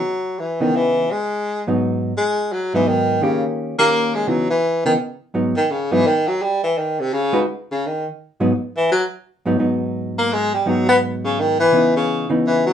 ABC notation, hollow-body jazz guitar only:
X:1
M:3/4
L:1/8
Q:"Swing" 1/4=169
K:G#m
V:1 name="Hollow-body jazz guitar"
z3 [C,E,B,D]3 | z3 [G,,F,B,D]3 | z3 [G,,F,B,D]3 | [D,A,C=G]3 [D,A,CG]3 |
[C,E,B,D] z2 [C,E,B,D] z2 | [G,,F,B,D] z2 [G,,F,B,D] z2 | z4 z [G,DFB] | z4 z [G,,F,B,D] |
z4 z [G,,F,B,D] | [G,,F,B,D]4- [G,,F,B,D] z | [G,,F,B,D]4- [G,,F,B,D] z | [C,E,B,D]3 [C,E,B,D]3 |]